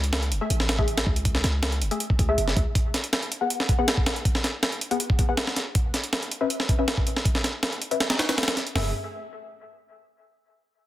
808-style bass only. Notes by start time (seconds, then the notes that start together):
Already playing: C#2
0.31 F#1
0.50 A1
1.07 C#2
1.44 C#2
1.82 F#1
2.19 C#2
2.38 F#1
2.57 C#2
8.75 F#1